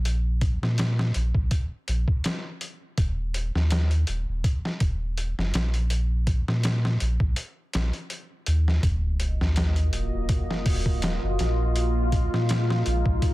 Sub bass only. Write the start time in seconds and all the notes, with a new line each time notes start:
Already playing: A#1
0.62 A#2
1.15 A#1
1.35 A#1
1.88 A#1
2.98 D#1
3.55 D#2
4.08 D#1
4.28 D#1
4.81 D#1
5.38 F#1
5.54 A#1
6.48 A#2
7.01 A#1
7.20 A#1
7.75 A#1
8.47 D#2
8.83 D#1
9.41 D#2
9.93 D#1
10.14 D#1
10.66 D#1
11.24 F#1
11.40 A#1
12.34 A#2
12.86 A#1
13.06 A#1